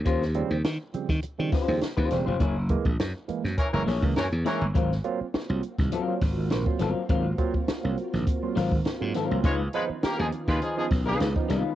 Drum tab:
HH |x-x-x-x-x-o-x-x-|x-x-x-x-x-o-x-x-|x-x-x-x-x-o-x-x-|x-x-x-x-x-o-x-x-|
SD |-o--o--o--o-o-o-|----o--o--o-o-o-|-o--o--o--o-o-o-|----o--o--o-o-o-|
BD |o------o--o--o--|o-oo----o--o----|o------o--o--o--|o-oo----o--o----|

HH |x-x-x-x-x-o-x-x-|
SD |----o--o--o-o-o-|
BD |o------o--o--o--|